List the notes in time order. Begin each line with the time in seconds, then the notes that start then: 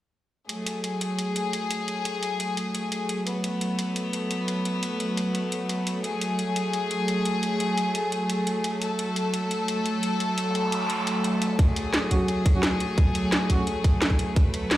0.49 F#3 A3 G#4, closed hi-hat
0.66 closed hi-hat
0.84 closed hi-hat
1.01 closed hi-hat
1.19 closed hi-hat
1.36 closed hi-hat
1.53 closed hi-hat
1.71 closed hi-hat
1.88 closed hi-hat
2.05 closed hi-hat
2.23 closed hi-hat
2.40 closed hi-hat
2.57 closed hi-hat
2.75 closed hi-hat
2.92 closed hi-hat
3.09 closed hi-hat
3.27 B3, closed hi-hat
3.44 closed hi-hat
3.61 closed hi-hat
3.79 closed hi-hat
3.96 closed hi-hat
4.13 closed hi-hat
4.31 closed hi-hat
4.48 closed hi-hat
4.65 closed hi-hat
4.83 closed hi-hat
5.00 closed hi-hat
5.17 closed hi-hat
5.35 closed hi-hat
5.52 closed hi-hat
5.69 closed hi-hat
5.87 closed hi-hat
6.04 G#4, closed hi-hat
6.21 closed hi-hat
6.39 closed hi-hat
6.56 closed hi-hat
6.73 closed hi-hat
6.91 closed hi-hat
7.08 closed hi-hat
7.25 closed hi-hat
7.43 closed hi-hat
7.60 closed hi-hat
7.77 closed hi-hat
7.95 closed hi-hat
8.12 closed hi-hat
8.30 closed hi-hat
8.47 closed hi-hat
8.64 closed hi-hat
8.82 A4, closed hi-hat
8.99 closed hi-hat
9.16 closed hi-hat
9.34 closed hi-hat
9.51 closed hi-hat
9.68 closed hi-hat
9.86 closed hi-hat
10.03 closed hi-hat
10.20 closed hi-hat, noise sweep
10.38 closed hi-hat
10.55 closed hi-hat
10.72 closed hi-hat
10.90 closed hi-hat
11.07 closed hi-hat
11.24 closed hi-hat
11.42 closed hi-hat
11.59 G#4, kick, closed hi-hat
11.76 closed hi-hat
11.94 snare, closed hi-hat
12.11 F#3 C#4 F#4, kick, closed hi-hat
12.28 closed hi-hat
12.46 kick, closed hi-hat
12.54 F#3 C#4 F#4
12.63 snare, closed hi-hat
12.80 closed hi-hat
12.98 kick, closed hi-hat
13.15 closed hi-hat
13.32 snare, closed hi-hat
13.50 F#3 C#4 F#4, kick, closed hi-hat
13.67 closed hi-hat
13.84 kick, closed hi-hat
14.02 snare, closed hi-hat
14.10 kick
14.19 closed hi-hat
14.36 B4, kick, closed hi-hat
14.54 closed hi-hat
14.71 snare, closed hi-hat